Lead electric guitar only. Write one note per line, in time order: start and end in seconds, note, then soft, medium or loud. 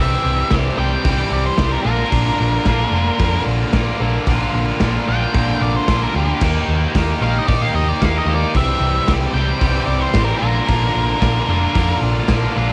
0.01 0.52 E5 loud
0.79 1.31 G5 loud
1.33 1.46 D5 loud
1.46 1.72 C5 medium
1.72 1.82 A#4 medium
1.83 3.41 A#4 loud
5.09 5.60 G5 medium
5.62 5.76 D5 medium
5.76 6.01 C5 medium
6.03 6.15 A#4 medium
6.16 6.42 G4 loud
7.23 7.38 F5 medium
7.38 7.47 D#5 medium
7.47 7.62 D5 medium
7.62 7.75 F5 medium
7.75 7.88 D#5 medium
7.88 8.04 D5 medium
8.04 8.16 F5 medium
8.18 8.30 D#5 medium
8.35 8.56 D5 loud
8.57 9.08 E5 medium
9.34 9.87 G5 loud
9.86 10.01 D5 loud
10.00 10.24 C5 medium
10.25 10.38 A#4 medium
10.39 11.98 A#4 loud